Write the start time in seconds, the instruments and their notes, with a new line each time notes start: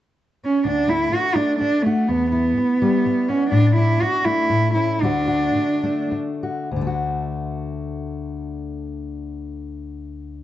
0.44 cello C#4
0.65 steel-string acoustic guitar D2, cello D4
0.88 steel-string acoustic guitar A3, cello E4
1.12 cello F#4, muted steel-string acoustic guitar stroke
1.35 steel-string acoustic guitar A3, cello D4
1.59 cello D4, muted steel-string acoustic guitar stroke
1.82 cello A3, steel-string acoustic guitar F#4
2.08 steel-string acoustic guitar E2, cello B3
2.31 cello B3, steel-string acoustic guitar E4
2.57 muted steel-string acoustic guitar stroke
2.82 steel-string acoustic guitar G3
3.06 muted steel-string acoustic guitar stroke
3.29 steel-string acoustic guitar B3, cello C#4
3.50 steel-string acoustic guitar A2, cello D4
3.76 steel-string acoustic guitar D4, cello E4
4.02 cello F#4, muted steel-string acoustic guitar stroke
4.25 steel-string acoustic guitar A3, cello E4
4.50 steel-string acoustic guitar A2
4.74 steel-string acoustic guitar C#4, cello E4
5.02 steel-string acoustic guitar D2 D3 A3 F#4, cello D4
5.28 steel-string acoustic guitar F#4
5.55 muted steel-string acoustic guitar stroke
5.83 steel-string acoustic guitar A3
6.11 muted steel-string acoustic guitar stroke
6.43 steel-string acoustic guitar F#4
6.71 steel-string acoustic guitar D2
6.76 steel-string acoustic guitar D3
6.81 steel-string acoustic guitar A3
6.87 steel-string acoustic guitar F#4